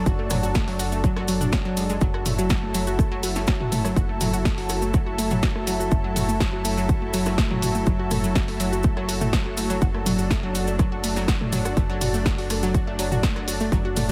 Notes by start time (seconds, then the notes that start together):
Already playing: F#3 D4 A4
0.06 F#1 F#4, kick, cabasa
0.19 A3
0.30 F#3, cross-stick, mid tom, open hi-hat, cabasa
0.43 F#4, cabasa
0.55 A3, kick, snare, cabasa
0.68 F#3, open hi-hat
0.79 F#4, open hi-hat, cabasa
0.92 A3, cabasa
1.04 F#3, kick, cabasa
1.16 F#4, cross-stick, snare
1.28 F#3, open hi-hat, cabasa
1.41 D4, mid tom, cabasa
1.52 C#4, kick, snare, cabasa
1.65 F#3
1.77 G#3, open hi-hat, cabasa
1.89 G#3, cabasa
2.01 F#1 F#3 E4 A4, kick, cabasa
2.14 F#4, cross-stick
2.26 A3, mid tom, open hi-hat, cabasa
2.39 F#3, cabasa
2.50 F#4, kick, snare, cabasa
2.63 A3
2.74 F#3, open hi-hat, cabasa
2.87 F#4, cabasa
2.99 A3, kick, cross-stick, cabasa
3.12 F#3
3.23 F#4, open hi-hat, cabasa
3.36 A3, snare, cabasa
3.47 F#3, kick, snare, cabasa
3.60 F#4, mid tom
3.72 A3, mid tom, open hi-hat, cabasa
3.85 F#3, cross-stick, cabasa
3.96 F#1 F#4, kick, cabasa
4.09 A3
4.21 F#3, mid tom, open hi-hat, cabasa
4.33 F#4, cabasa
4.45 A3, kick, snare, cabasa
4.58 F#3, open hi-hat
4.69 F#4, cross-stick, open hi-hat, cabasa
4.82 A3, cabasa
4.94 F#3, kick, cabasa
5.06 F#4
5.18 A3, open hi-hat, cabasa
5.31 F#3, mid tom, cabasa
5.43 F#4, kick, snare, cabasa
5.55 A3, cross-stick
5.67 F#3, open hi-hat, cabasa
5.80 F#4, cabasa
5.91 F#1 A3, kick, cabasa
6.04 F#3
6.16 F#4, mid tom, open hi-hat, cabasa
6.29 A3, cabasa
6.40 F#3, kick, cross-stick, snare, cabasa
6.53 F#4
6.65 A3, open hi-hat, cabasa
6.77 F#3, cabasa
6.89 F#4, kick, cabasa
7.02 A3
7.13 F#3, open hi-hat, cabasa
7.26 F#4, cross-stick, snare, cabasa
7.38 A3, kick, snare, cabasa
7.51 F#3, mid tom
7.62 F#4, mid tom, open hi-hat, cabasa
7.75 A3, cabasa
7.86 F#1 F#3, kick, cabasa
7.99 F#4
8.11 A3, cross-stick, mid tom, open hi-hat, cabasa
8.24 F#3, cabasa
8.35 F#4, kick, snare, cabasa
8.48 A3, open hi-hat
8.60 F#3, open hi-hat, cabasa
8.72 F#4, cabasa
8.83 A3, kick, cabasa
8.97 F#3, cross-stick
9.09 F#4, open hi-hat, cabasa
9.21 A3, mid tom, cabasa
9.33 F#3, kick, snare, cabasa
9.46 F#4
9.57 A3, open hi-hat, cabasa
9.70 F#3, cabasa
9.82 F#1 D4 F#4, kick, cabasa
9.94 A3, cross-stick
10.06 F#3, mid tom, open hi-hat, cabasa
10.19 F#4, cabasa
10.31 A3, kick, snare, cabasa
10.43 F#3
10.55 F#4, open hi-hat, cabasa
10.67 A3, cabasa
10.79 F#3, kick, cross-stick, cabasa
10.92 F#4
11.04 A3, open hi-hat, cabasa
11.16 F#3, snare, cabasa
11.28 F#4, kick, snare, cabasa
11.41 A3, mid tom
11.52 F#3, mid tom, open hi-hat, cabasa
11.65 F#4, cross-stick, cabasa
11.77 F#1 A3, kick, cabasa
11.90 F#3
12.01 F#4, mid tom, open hi-hat, cabasa
12.14 A3, cabasa
12.26 F#3, kick, snare, cabasa
12.38 F#4, open hi-hat
12.50 A3, cross-stick, open hi-hat, cabasa
12.63 F#3, cabasa
12.74 F#4, kick, cabasa
12.87 A3
12.99 F#3, open hi-hat, cabasa
13.12 F#4, mid tom, cabasa
13.23 A3, kick, snare, cabasa
13.36 F#3, cross-stick
13.48 F#4, open hi-hat, cabasa
13.60 A3, cabasa
13.72 F#1 F#3, kick, cabasa
13.85 F#4
13.97 A3, mid tom, open hi-hat, cabasa